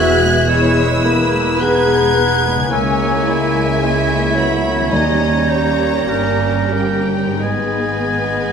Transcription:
Already playing: double bass section E1, cello section E2, bassoon E3, harp E3 G#3 B3, viola section B3 G#4, clarinet F#4, french horn section F#4, oboe E5, violin section E5 F#6, flute G#6
0.21 viola section G#3
0.48 viola section E3, bassoon G#3, french horn section E4, clarinet E4, oboe B4, violin section C#5 E6
0.77 viola section G#3
1.04 bassoon A#3, viola section B3, violin section B4
1.34 viola section G#3
1.60 viola section E3, bassoon B3, clarinet D#4, french horn section G#4, flute F#6, violin section G#6
1.88 viola section G#3
2.16 viola section B3, bassoon B3
2.44 viola section G#3
2.55 harp C#3
2.59 harp A#3
2.64 harp C#4
2.69 double bass section C#2, french horn section G#3, bassoon A#3, viola section A#3 E4, clarinet C#4, harp E4, oboe C#5, violin section C#5
2.73 cello section C#2, violin section G#5, flute E6
3.27 clarinet E4, violin section E5
3.81 bassoon G#3, viola section E4, clarinet E4, oboe C#5, flute G#6
4.35 bassoon F#3, french horn section B3, violin section B5
4.75 harp D#3
4.79 harp G3
4.83 harp C#4
4.88 bassoon G3, harp D#4, violin section D#5, flute G#6
4.92 double bass section D#2, cello section D#2, timpani D#3, french horn section A#3, viola section C#4 G4, clarinet D#4, violin section A#5
5.49 violin section C#5, flute G6
6.08 double bass section G1, cello section G2, bassoon G3, oboe A#4, violin section A#4, flute G6
6.12 clarinet C#4
6.73 french horn section G3, bassoon A#3, violin section A#4 G5
7.23 harp G#2
7.28 harp G#3
7.32 harp B3
7.37 bassoon G#3, harp D#4, violin section B4
7.41 double bass section G#1, cello section G#2, french horn section G#3, viola section B3 G#4, clarinet B3, oboe D#5, violin section G#5, flute G#6

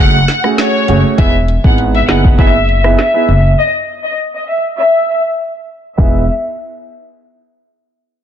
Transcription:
Already playing: grand piano A3 C#4 F#4
0.00 upright bass F#1, grand piano G#4, violin section F#5
0.28 snare, closed hi-hat
0.43 grand piano A3 C#4 F#4 G#4, cross-stick
0.58 violin section C#5, snare, closed hi-hat
0.88 upright bass F#1, grand piano A3 C#4 F#4 G#4, closed hi-hat
1.18 upright bass E1, grand piano B3 D#4 E4 G#4, violin section E5, kick, closed hi-hat
1.48 closed hi-hat
1.64 upright bass G#1, grand piano B3 D#4 E4 G#4, violin section F#5, kick
1.78 closed hi-hat
1.95 violin section E5, closed hi-hat
2.08 upright bass F#1, grand piano B3 D#4 E4 G#4, violin section F#5, snare, closed hi-hat
2.24 kick
2.38 grand piano B3 D#4 E4 G#4, violin section E5, kick, closed hi-hat
2.69 closed hi-hat
2.84 grand piano B3 D#4 E4 G#4, cross-stick
2.98 violin section E5, snare, closed hi-hat
3.14 grand piano B3 D#4 E4 G#4
3.28 upright bass F#1, closed hi-hat
3.59 violin section D#5
4.04 violin section D#5
4.34 violin section D#5
4.49 violin section E5
4.79 violin section E5
5.97 upright bass E1, grand piano B3 D#4 E4 G#4, violin section E5, kick, crash

